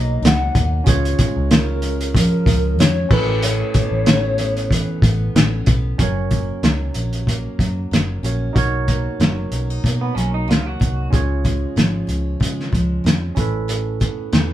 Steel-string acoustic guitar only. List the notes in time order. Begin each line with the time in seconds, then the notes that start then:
Already playing: B2 F#3 A#3 D#4
0.22 D#4
0.56 A#3
0.86 C#3
1.19 G#3
1.51 C#4
1.83 G#3
2.15 F3
2.47 G#3
2.79 C#4
3.11 A2
3.43 A2
3.76 B3
4.07 C#4
4.39 B3
4.72 E3
5.04 B3
5.36 C#4
5.68 B3
5.99 F#2
6.31 A#3
6.63 F#3
6.95 C#4
7.28 A#3
7.59 F#3
7.91 A#3
8.23 C#4
8.56 B2
8.88 A#3
9.20 F#3
9.53 C#4
9.70 D#4
9.84 A#3
10.17 F#3
10.48 A#3
10.80 D#4
11.12 C#3
11.44 G#3
11.76 F3
12.07 C#4
12.40 G#3
12.72 F3
13.04 G#3
13.36 A2
13.68 A2
14.00 B3
14.33 E3